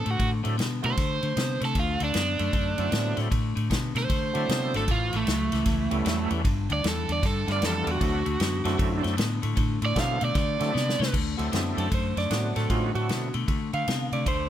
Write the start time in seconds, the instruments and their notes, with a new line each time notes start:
Already playing: overdriven electric guitar A4
0.05 fingered electric bass A2, clean electric guitar D3 A3, ride
0.11 overdriven electric guitar F#4
0.19 fingered electric bass A2, clean electric guitar D3 A3, kick, ride
0.43 fingered electric bass A2, clean electric guitar D3 A3, tonewheel organ F#3 A3 C4 D4 E4, ride
0.57 fingered electric bass B2, clean electric guitar D3 B3, snare, ride
0.82 fingered electric bass B2, clean electric guitar D3 A3, tonewheel organ F#3 A3 C4 D4 E4, overdriven electric guitar C5, ride
0.97 fingered electric bass D3, clean electric guitar D3 A3, kick, snare, ride
1.22 clean electric guitar D3 A3, fingered electric bass D3, ride
1.36 fingered electric bass C3, clean electric guitar D3 B3, snare, ride
1.61 fingered electric bass C3, clean electric guitar D3 A3, snare, ride
1.65 overdriven electric guitar A4
1.75 fingered electric bass D2, clean electric guitar D3 A3, kick, ride
1.79 overdriven electric guitar F4
2.00 fingered electric bass D2, clean electric guitar D3 A3, ride
2.04 overdriven electric guitar D4
2.14 fingered electric bass F#2, clean electric guitar D3 B3, snare, ride
2.39 fingered electric bass F#2, clean electric guitar D3 A3, ride
2.53 fingered electric bass F#2, clean electric guitar D3 A3, kick, ride
2.77 fingered electric bass F#2, clean electric guitar D3 A3, tonewheel organ F#3 A3 C4 D4 E4, ride
2.92 fingered electric bass A2, clean electric guitar D3 B3, snare, ride
3.17 fingered electric bass A2, clean electric guitar D3 A3, snare, ride
3.30 fingered electric bass A2, clean electric guitar D3 A3, kick, ride
3.55 fingered electric bass A2, clean electric guitar D3 A3, ride
3.70 fingered electric bass B2, clean electric guitar D3 B3, kick, snare, ride
3.95 fingered electric bass B2, clean electric guitar D3 A3, overdriven electric guitar C5, snare, ride
4.09 clean electric guitar D3 A3, fingered electric bass D3, kick, ride
4.33 clean electric guitar D3 A3, fingered electric bass D3, tonewheel organ F#3 A3 C4 D4 E4, ride
4.49 fingered electric bass C3, clean electric guitar D3 B3, snare, ride
4.74 fingered electric bass G#1, clean electric guitar D3 A3, overdriven electric guitar A4, snare, ride
4.88 fingered electric bass A1, clean electric guitar A2 E3, overdriven electric guitar F4, kick, ride
5.13 fingered electric bass A1, clean electric guitar A2 E3, overdriven electric guitar A3, ride
5.27 fingered electric bass C#2, clean electric guitar A2 F#3, snare, ride
5.52 fingered electric bass C#2, clean electric guitar A2 E3, snare, ride
5.66 fingered electric bass C#2, clean electric guitar A2 E3, kick, snare, ride
5.91 fingered electric bass C#2, clean electric guitar A2 E3, tonewheel organ G3 A3 B3 C#4 E4, ride
6.05 fingered electric bass E2, clean electric guitar A2 F#3, snare, ride
6.30 fingered electric bass E2, clean electric guitar A2 E3, ride
6.44 fingered electric bass G1, clean electric guitar G2 D3, kick, ride
6.69 fingered electric bass D2, clean electric guitar G2 D3, overdriven electric guitar D5, ride
6.83 fingered electric bass E2, clean electric guitar G2 E3, snare, ride
6.88 overdriven electric guitar A4
7.08 fingered electric bass E2, clean electric guitar G2 D3, overdriven electric guitar D5, ride
7.22 clean electric guitar G2 D3, fingered electric bass G2, overdriven electric guitar A4, kick, snare, ride
7.47 clean electric guitar G2 D3, fingered electric bass G2, tonewheel organ G3 A3 B3 D4 F4, snare, ride
7.52 overdriven electric guitar D5
7.62 fingered electric bass F2, clean electric guitar G2 E3, overdriven electric guitar A4, snare, ride
7.87 fingered electric bass E2, clean electric guitar G2 D3, ride
7.91 overdriven electric guitar F#4
8.00 fingered electric bass D2, clean electric guitar D3 A3, tonewheel organ F#3 A3 C4 D4 E4, kick, ride
8.26 fingered electric bass D2, clean electric guitar D3 A3, ride
8.40 fingered electric bass F#2, clean electric guitar D3 B3, snare, ride
8.64 fingered electric bass F#2, clean electric guitar D3 A3, tonewheel organ F#3 A3 C4 D4 E4, snare, ride
8.78 fingered electric bass F#2, clean electric guitar D3 A3, kick, ride
9.03 fingered electric bass F#2, clean electric guitar D3 A3, snare, ride
9.17 fingered electric bass A2, clean electric guitar D3 B3, snare, ride
9.42 fingered electric bass A2, clean electric guitar D3 A3, ride
9.56 fingered electric bass A2, clean electric guitar D3 A3, kick, ride
9.82 fingered electric bass A2, clean electric guitar D3 A3, overdriven electric guitar D5, ride
9.95 clean electric guitar D3 B3, tonewheel organ F#3 A3 C4 D4 E4, kick, snare, ride
10.00 overdriven electric guitar F5
10.20 fingered electric bass B2, clean electric guitar D3 A3, ride
10.25 overdriven electric guitar D5
10.34 clean electric guitar D3 A3, fingered electric bass D3, overdriven electric guitar D5, kick, snare, ride
10.59 clean electric guitar D3 A3, fingered electric bass D3, tonewheel organ F#3 A3 C4 D4 E4, snare, ride
10.73 fingered electric bass C3, clean electric guitar D3 B3, snare
10.89 snare
10.98 fingered electric bass C3, clean electric guitar D3 A3
11.02 snare
11.13 fingered electric bass D2, clean electric guitar D3 A3, kick, crash
11.37 fingered electric bass D2, clean electric guitar D3 A3, tonewheel organ F#3 A3 C4 D4 E4, ride
11.52 fingered electric bass F#2, clean electric guitar D3 B3, snare, ride
11.77 fingered electric bass F#2, clean electric guitar D3 A3, electric slide guitar A4, ride
11.91 fingered electric bass F#2, clean electric guitar D3 A3, electric slide guitar C5, kick, ride
12.16 fingered electric bass F#2, clean electric guitar D3 A3, electric slide guitar D5, snare, ride
12.30 fingered electric bass A2, clean electric guitar D3 B3, tonewheel organ F#3 A3 C4 D4 F#4, snare, ride
12.56 fingered electric bass A2, clean electric guitar D3 A3, electric slide guitar A4, snare, ride
12.69 fingered electric bass A2, clean electric guitar D3 A3, tonewheel organ F3 G#3 B3 C#4 D#4, electric slide guitar F4, kick, ride
12.93 fingered electric bass A2, clean electric guitar D3 A3, tonewheel organ F#3 A3 C4 D4 E4, electric slide guitar F#4, ride
13.09 fingered electric bass B2, clean electric guitar D3 B3, snare, ride
13.34 fingered electric bass B2, clean electric guitar D3 A3, ride
13.47 clean electric guitar D3 A3, fingered electric bass D3, kick, ride
13.73 clean electric guitar D3 A3, fingered electric bass D3, electric slide guitar F5, ride
13.87 fingered electric bass C3, clean electric guitar D3 B3, snare, ride
14.12 fingered electric bass C3, clean electric guitar D3 A3, electric slide guitar D5, ride
14.26 fingered electric bass D2, clean electric guitar D3 A3, electric slide guitar C5, kick, ride